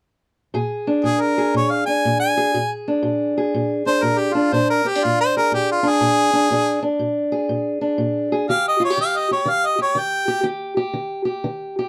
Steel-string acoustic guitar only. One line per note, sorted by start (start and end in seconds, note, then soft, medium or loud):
0.54 1.01 A#2 medium
0.54 1.37 G#4 medium
0.87 1.87 D4 medium
1.04 1.51 A#2 medium
1.38 2.37 G#4 medium
1.54 2.01 A#2 medium
1.87 2.57 D4 medium
2.05 2.51 A#2 medium
2.37 2.54 G#4 medium
2.54 3.01 A#2 medium
2.54 3.37 G#4 medium
2.88 3.86 D4 medium
3.03 3.50 A#2 medium
3.38 4.55 G#4 medium
3.54 4.01 A#2 medium
3.86 4.34 D4 medium
4.03 4.50 A#2 medium
4.35 4.54 D4 medium
4.52 4.99 A#2 medium
4.52 4.84 D4 medium
4.85 4.95 C4 medium
4.95 5.82 D4 medium
5.05 5.50 A#2 medium
5.37 6.51 G#4 medium
5.52 5.99 A#2 medium
5.83 6.32 D4 medium
6.01 6.48 A#2 medium
6.33 6.50 D4 medium
6.50 6.97 A#2 medium
6.50 6.81 D4 medium
6.82 7.80 D4 medium
6.99 7.47 A#2 medium
7.32 8.31 G#4 medium
7.49 7.96 A#2 medium
7.81 8.47 D4 medium
7.98 8.45 A#2 medium
8.32 8.48 G#4 medium
8.49 8.96 D#3 medium
8.49 8.79 G4 medium
8.80 8.90 F4 medium
8.90 9.30 G4 medium
8.97 9.44 D#3 medium
9.31 9.77 G4 medium
9.45 9.93 D#3 medium
9.79 10.27 G4 medium
9.95 10.42 D#3 medium
10.28 10.42 G4 medium
10.43 10.92 D#3 medium
10.43 10.76 G4 medium
10.77 11.24 G4 medium
10.93 11.41 D#3 medium
11.25 11.77 G4 medium
11.44 11.89 D#3 medium
11.79 11.89 G4 medium